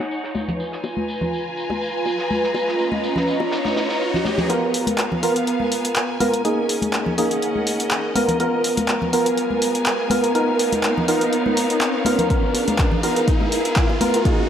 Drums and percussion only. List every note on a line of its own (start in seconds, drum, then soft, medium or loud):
0.00 snare soft
0.11 tambourine medium
0.24 snare soft
0.35 tambourine medium
0.35 high bongo soft
0.35 high conga medium
0.48 closed hi-hat soft
0.48 low conga medium
0.60 tambourine medium
0.72 snare soft
0.84 tambourine medium
0.84 high bongo medium
0.97 high conga medium
1.08 tambourine medium
1.21 high bongo soft
1.21 low conga medium
1.33 tambourine medium
1.57 tambourine medium
1.70 high bongo medium
1.70 high conga medium
1.81 tambourine medium
2.06 tambourine medium
2.06 high bongo soft
2.18 snare soft
2.30 tambourine medium
2.30 high conga medium
2.43 snare soft
2.54 tambourine medium
2.54 high bongo medium
2.68 snare soft
2.79 tambourine medium
2.92 high bongo medium
2.92 high conga medium
3.04 tambourine medium
3.16 snare soft
3.16 low conga medium
3.28 tambourine medium
3.40 high bongo medium
3.52 snare medium
3.52 tambourine medium
3.65 snare medium
3.65 tambourine medium
3.65 high conga medium
3.76 snare loud
3.76 tambourine medium
3.76 high bongo soft
3.89 snare loud
3.89 tambourine medium
4.01 tambourine medium
4.14 snare soft
4.14 low conga medium
4.25 snare medium
4.25 tambourine medium
4.25 high bongo medium
4.25 high conga medium
4.38 closed hi-hat soft
4.38 low conga medium
4.50 closed hi-hat medium
4.74 open hi-hat loud
4.87 closed hi-hat medium
4.87 high conga medium
4.98 clap loud
4.98 closed hi-hat soft
5.12 low conga medium
5.23 open hi-hat medium
5.36 closed hi-hat medium
5.47 closed hi-hat soft
5.60 high conga medium
5.72 open hi-hat loud
5.85 closed hi-hat medium
5.96 clap loud
5.96 closed hi-hat soft
6.20 open hi-hat medium
6.20 high conga medium
6.34 closed hi-hat medium
6.45 closed hi-hat soft
6.69 open hi-hat loud
6.82 closed hi-hat medium
6.82 high conga loud
6.93 clap loud
6.93 closed hi-hat soft
7.06 low conga medium
7.18 open hi-hat medium
7.31 closed hi-hat medium
7.42 closed hi-hat medium
7.56 high conga medium
7.67 open hi-hat loud
7.80 closed hi-hat medium
7.91 clap loud
7.91 closed hi-hat soft
8.15 open hi-hat medium
8.15 high conga medium
8.28 closed hi-hat medium
8.28 low conga medium
8.40 closed hi-hat soft
8.64 open hi-hat loud
8.77 closed hi-hat medium
8.77 high conga loud
8.88 clap loud
8.88 closed hi-hat soft
9.02 low conga medium
9.13 open hi-hat medium
9.26 closed hi-hat medium
9.37 closed hi-hat medium
9.50 high conga medium
9.62 open hi-hat loud
9.75 closed hi-hat medium
9.86 clap loud
9.86 closed hi-hat soft
10.10 open hi-hat medium
10.10 high conga medium
10.24 closed hi-hat medium
10.35 closed hi-hat soft
10.59 open hi-hat loud
10.72 closed hi-hat medium
10.72 high conga medium
10.83 clap loud
10.83 closed hi-hat soft
10.98 low conga medium
11.08 open hi-hat loud
11.21 closed hi-hat medium
11.33 closed hi-hat soft
11.46 high conga medium
11.57 open hi-hat loud
11.70 closed hi-hat medium
11.81 clap loud
11.81 closed hi-hat soft
12.05 open hi-hat medium
12.05 high conga medium
12.19 closed hi-hat medium
12.19 low conga medium
12.30 kick loud
12.30 closed hi-hat soft
12.54 open hi-hat loud
12.54 high bongo soft
12.68 closed hi-hat medium
12.68 high conga loud
12.79 kick loud
12.79 clap loud
12.79 closed hi-hat soft
12.91 low conga medium
13.03 open hi-hat medium
13.03 high bongo medium
13.16 closed hi-hat medium
13.28 kick loud
13.28 closed hi-hat medium
13.40 high bongo medium
13.40 high conga medium
13.52 open hi-hat loud
13.65 closed hi-hat medium
13.76 kick loud
13.76 clap loud
13.76 closed hi-hat soft
13.90 high bongo medium
14.01 open hi-hat medium
14.01 high conga medium
14.14 closed hi-hat medium
14.25 kick loud
14.25 closed hi-hat medium
14.25 high bongo soft